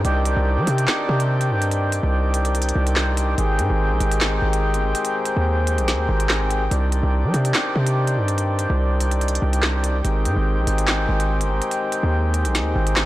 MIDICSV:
0, 0, Header, 1, 4, 480
1, 0, Start_track
1, 0, Key_signature, -3, "minor"
1, 0, Tempo, 416667
1, 54, Time_signature, 4, 2, 24, 8
1, 15038, End_track
2, 0, Start_track
2, 0, Title_t, "Accordion"
2, 0, Program_c, 0, 21
2, 56, Note_on_c, 0, 51, 79
2, 56, Note_on_c, 0, 60, 78
2, 56, Note_on_c, 0, 62, 75
2, 56, Note_on_c, 0, 67, 89
2, 3857, Note_off_c, 0, 62, 0
2, 3857, Note_off_c, 0, 67, 0
2, 3894, Note_on_c, 0, 56, 76
2, 3894, Note_on_c, 0, 67, 93
2, 7696, Note_off_c, 0, 56, 0
2, 7735, Note_on_c, 0, 62, 76
2, 11529, Note_off_c, 0, 51, 0
2, 11529, Note_off_c, 0, 60, 0
2, 11537, Note_off_c, 0, 62, 0
2, 11573, Note_on_c, 0, 51, 83
2, 11573, Note_on_c, 0, 56, 75
2, 11573, Note_on_c, 0, 60, 77
2, 15038, Note_off_c, 0, 51, 0
2, 15038, Note_off_c, 0, 56, 0
2, 15038, Note_off_c, 0, 60, 0
2, 15038, Note_off_c, 0, 67, 0
2, 15038, End_track
3, 0, Start_track
3, 0, Title_t, "808-style bass"
3, 0, Program_c, 1, 38
3, 55, Note_on_c, 1, 36, 108
3, 407, Note_off_c, 1, 36, 0
3, 422, Note_on_c, 1, 36, 109
3, 662, Note_on_c, 1, 55, 97
3, 679, Note_off_c, 1, 36, 0
3, 769, Note_off_c, 1, 55, 0
3, 775, Note_on_c, 1, 48, 100
3, 1005, Note_off_c, 1, 48, 0
3, 1255, Note_on_c, 1, 48, 109
3, 1735, Note_on_c, 1, 43, 100
3, 1752, Note_off_c, 1, 48, 0
3, 2311, Note_off_c, 1, 43, 0
3, 2342, Note_on_c, 1, 36, 100
3, 3141, Note_off_c, 1, 36, 0
3, 3174, Note_on_c, 1, 36, 108
3, 3865, Note_off_c, 1, 36, 0
3, 3894, Note_on_c, 1, 32, 106
3, 4134, Note_on_c, 1, 44, 98
3, 4151, Note_off_c, 1, 32, 0
3, 4255, Note_off_c, 1, 44, 0
3, 4261, Note_on_c, 1, 32, 110
3, 4501, Note_on_c, 1, 34, 101
3, 4518, Note_off_c, 1, 32, 0
3, 4609, Note_off_c, 1, 34, 0
3, 4613, Note_on_c, 1, 32, 103
3, 5075, Note_off_c, 1, 32, 0
3, 5093, Note_on_c, 1, 32, 105
3, 5460, Note_on_c, 1, 31, 100
3, 5478, Note_off_c, 1, 32, 0
3, 5574, Note_on_c, 1, 32, 99
3, 5591, Note_off_c, 1, 31, 0
3, 5695, Note_off_c, 1, 32, 0
3, 6181, Note_on_c, 1, 39, 108
3, 6661, Note_on_c, 1, 34, 103
3, 6678, Note_off_c, 1, 39, 0
3, 6838, Note_on_c, 1, 39, 99
3, 6855, Note_off_c, 1, 34, 0
3, 7005, Note_off_c, 1, 39, 0
3, 7014, Note_on_c, 1, 32, 103
3, 7705, Note_off_c, 1, 32, 0
3, 7734, Note_on_c, 1, 36, 113
3, 8087, Note_off_c, 1, 36, 0
3, 8101, Note_on_c, 1, 36, 111
3, 8341, Note_on_c, 1, 55, 98
3, 8358, Note_off_c, 1, 36, 0
3, 8448, Note_off_c, 1, 55, 0
3, 8454, Note_on_c, 1, 48, 103
3, 8685, Note_off_c, 1, 48, 0
3, 8934, Note_on_c, 1, 48, 107
3, 9414, Note_on_c, 1, 43, 101
3, 9431, Note_off_c, 1, 48, 0
3, 9991, Note_off_c, 1, 43, 0
3, 10021, Note_on_c, 1, 36, 107
3, 10821, Note_off_c, 1, 36, 0
3, 10854, Note_on_c, 1, 36, 107
3, 11545, Note_off_c, 1, 36, 0
3, 11574, Note_on_c, 1, 32, 102
3, 11814, Note_on_c, 1, 44, 98
3, 11831, Note_off_c, 1, 32, 0
3, 11935, Note_off_c, 1, 44, 0
3, 11941, Note_on_c, 1, 32, 108
3, 12181, Note_on_c, 1, 34, 99
3, 12199, Note_off_c, 1, 32, 0
3, 12289, Note_off_c, 1, 34, 0
3, 12294, Note_on_c, 1, 32, 101
3, 12755, Note_off_c, 1, 32, 0
3, 12774, Note_on_c, 1, 32, 109
3, 13141, Note_on_c, 1, 31, 99
3, 13159, Note_off_c, 1, 32, 0
3, 13254, Note_on_c, 1, 32, 99
3, 13272, Note_off_c, 1, 31, 0
3, 13375, Note_off_c, 1, 32, 0
3, 13862, Note_on_c, 1, 39, 110
3, 14342, Note_on_c, 1, 34, 98
3, 14359, Note_off_c, 1, 39, 0
3, 14519, Note_on_c, 1, 39, 98
3, 14537, Note_off_c, 1, 34, 0
3, 14686, Note_off_c, 1, 39, 0
3, 14696, Note_on_c, 1, 32, 106
3, 15038, Note_off_c, 1, 32, 0
3, 15038, End_track
4, 0, Start_track
4, 0, Title_t, "Drums"
4, 54, Note_on_c, 9, 42, 73
4, 169, Note_off_c, 9, 42, 0
4, 293, Note_on_c, 9, 42, 79
4, 408, Note_off_c, 9, 42, 0
4, 773, Note_on_c, 9, 42, 82
4, 889, Note_off_c, 9, 42, 0
4, 901, Note_on_c, 9, 42, 71
4, 1010, Note_on_c, 9, 39, 94
4, 1014, Note_on_c, 9, 38, 121
4, 1016, Note_off_c, 9, 42, 0
4, 1125, Note_off_c, 9, 39, 0
4, 1129, Note_off_c, 9, 38, 0
4, 1381, Note_on_c, 9, 42, 71
4, 1496, Note_off_c, 9, 42, 0
4, 1622, Note_on_c, 9, 42, 70
4, 1737, Note_off_c, 9, 42, 0
4, 1862, Note_on_c, 9, 42, 83
4, 1975, Note_off_c, 9, 42, 0
4, 1975, Note_on_c, 9, 42, 73
4, 2090, Note_off_c, 9, 42, 0
4, 2215, Note_on_c, 9, 42, 82
4, 2330, Note_off_c, 9, 42, 0
4, 2694, Note_on_c, 9, 42, 85
4, 2810, Note_off_c, 9, 42, 0
4, 2822, Note_on_c, 9, 42, 72
4, 2934, Note_off_c, 9, 42, 0
4, 2934, Note_on_c, 9, 42, 68
4, 3015, Note_off_c, 9, 42, 0
4, 3015, Note_on_c, 9, 42, 69
4, 3095, Note_off_c, 9, 42, 0
4, 3095, Note_on_c, 9, 42, 68
4, 3210, Note_off_c, 9, 42, 0
4, 3302, Note_on_c, 9, 42, 71
4, 3411, Note_on_c, 9, 39, 96
4, 3415, Note_on_c, 9, 38, 116
4, 3417, Note_off_c, 9, 42, 0
4, 3526, Note_off_c, 9, 39, 0
4, 3530, Note_off_c, 9, 38, 0
4, 3654, Note_on_c, 9, 42, 79
4, 3770, Note_off_c, 9, 42, 0
4, 3894, Note_on_c, 9, 42, 72
4, 4009, Note_off_c, 9, 42, 0
4, 4133, Note_on_c, 9, 42, 83
4, 4249, Note_off_c, 9, 42, 0
4, 4614, Note_on_c, 9, 42, 84
4, 4729, Note_off_c, 9, 42, 0
4, 4741, Note_on_c, 9, 42, 72
4, 4849, Note_on_c, 9, 39, 95
4, 4853, Note_on_c, 9, 38, 119
4, 4856, Note_off_c, 9, 42, 0
4, 4964, Note_off_c, 9, 39, 0
4, 4968, Note_off_c, 9, 38, 0
4, 5221, Note_on_c, 9, 42, 71
4, 5336, Note_off_c, 9, 42, 0
4, 5461, Note_on_c, 9, 42, 69
4, 5576, Note_off_c, 9, 42, 0
4, 5701, Note_on_c, 9, 42, 83
4, 5814, Note_off_c, 9, 42, 0
4, 5814, Note_on_c, 9, 42, 73
4, 5929, Note_off_c, 9, 42, 0
4, 6053, Note_on_c, 9, 42, 80
4, 6169, Note_off_c, 9, 42, 0
4, 6533, Note_on_c, 9, 42, 83
4, 6648, Note_off_c, 9, 42, 0
4, 6660, Note_on_c, 9, 42, 72
4, 6773, Note_on_c, 9, 38, 71
4, 6774, Note_off_c, 9, 42, 0
4, 6774, Note_on_c, 9, 42, 82
4, 6888, Note_off_c, 9, 38, 0
4, 6889, Note_off_c, 9, 42, 0
4, 7141, Note_on_c, 9, 42, 75
4, 7249, Note_on_c, 9, 39, 92
4, 7254, Note_on_c, 9, 38, 119
4, 7256, Note_off_c, 9, 42, 0
4, 7365, Note_off_c, 9, 39, 0
4, 7369, Note_off_c, 9, 38, 0
4, 7494, Note_on_c, 9, 42, 77
4, 7609, Note_off_c, 9, 42, 0
4, 7734, Note_on_c, 9, 42, 72
4, 7849, Note_off_c, 9, 42, 0
4, 7974, Note_on_c, 9, 42, 80
4, 8089, Note_off_c, 9, 42, 0
4, 8454, Note_on_c, 9, 42, 84
4, 8569, Note_off_c, 9, 42, 0
4, 8581, Note_on_c, 9, 42, 72
4, 8689, Note_on_c, 9, 39, 97
4, 8693, Note_on_c, 9, 38, 120
4, 8696, Note_off_c, 9, 42, 0
4, 8804, Note_off_c, 9, 39, 0
4, 8809, Note_off_c, 9, 38, 0
4, 9061, Note_on_c, 9, 42, 76
4, 9176, Note_off_c, 9, 42, 0
4, 9301, Note_on_c, 9, 42, 72
4, 9416, Note_off_c, 9, 42, 0
4, 9541, Note_on_c, 9, 42, 81
4, 9653, Note_off_c, 9, 42, 0
4, 9653, Note_on_c, 9, 42, 72
4, 9768, Note_off_c, 9, 42, 0
4, 9893, Note_on_c, 9, 42, 80
4, 10008, Note_off_c, 9, 42, 0
4, 10374, Note_on_c, 9, 42, 85
4, 10489, Note_off_c, 9, 42, 0
4, 10500, Note_on_c, 9, 42, 69
4, 10613, Note_off_c, 9, 42, 0
4, 10613, Note_on_c, 9, 42, 69
4, 10693, Note_off_c, 9, 42, 0
4, 10693, Note_on_c, 9, 42, 67
4, 10773, Note_off_c, 9, 42, 0
4, 10773, Note_on_c, 9, 42, 68
4, 10889, Note_off_c, 9, 42, 0
4, 10980, Note_on_c, 9, 42, 72
4, 11089, Note_on_c, 9, 39, 92
4, 11093, Note_on_c, 9, 38, 116
4, 11095, Note_off_c, 9, 42, 0
4, 11204, Note_off_c, 9, 39, 0
4, 11208, Note_off_c, 9, 38, 0
4, 11333, Note_on_c, 9, 42, 80
4, 11448, Note_off_c, 9, 42, 0
4, 11573, Note_on_c, 9, 42, 73
4, 11688, Note_off_c, 9, 42, 0
4, 11813, Note_on_c, 9, 42, 85
4, 11928, Note_off_c, 9, 42, 0
4, 12294, Note_on_c, 9, 42, 86
4, 12409, Note_off_c, 9, 42, 0
4, 12421, Note_on_c, 9, 42, 70
4, 12529, Note_on_c, 9, 39, 97
4, 12534, Note_on_c, 9, 38, 122
4, 12537, Note_off_c, 9, 42, 0
4, 12644, Note_off_c, 9, 39, 0
4, 12649, Note_off_c, 9, 38, 0
4, 12902, Note_on_c, 9, 42, 75
4, 13017, Note_off_c, 9, 42, 0
4, 13142, Note_on_c, 9, 42, 73
4, 13257, Note_off_c, 9, 42, 0
4, 13382, Note_on_c, 9, 42, 81
4, 13494, Note_off_c, 9, 42, 0
4, 13494, Note_on_c, 9, 42, 72
4, 13609, Note_off_c, 9, 42, 0
4, 13734, Note_on_c, 9, 42, 81
4, 13850, Note_off_c, 9, 42, 0
4, 14215, Note_on_c, 9, 42, 85
4, 14330, Note_off_c, 9, 42, 0
4, 14342, Note_on_c, 9, 42, 71
4, 14456, Note_off_c, 9, 42, 0
4, 14456, Note_on_c, 9, 38, 71
4, 14456, Note_on_c, 9, 42, 81
4, 14571, Note_off_c, 9, 38, 0
4, 14571, Note_off_c, 9, 42, 0
4, 14823, Note_on_c, 9, 42, 76
4, 14931, Note_on_c, 9, 39, 93
4, 14936, Note_on_c, 9, 38, 115
4, 14938, Note_off_c, 9, 42, 0
4, 15038, Note_off_c, 9, 38, 0
4, 15038, Note_off_c, 9, 39, 0
4, 15038, End_track
0, 0, End_of_file